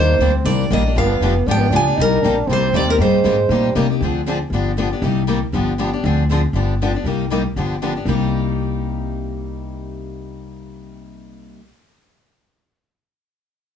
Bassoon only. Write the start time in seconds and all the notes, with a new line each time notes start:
Already playing: D#4
0.21 C4
0.98 B3
1.47 D4
1.59 B3
1.71 D4
1.96 D#4
2.22 D4
2.47 C4
3.01 G#3
3.50 G3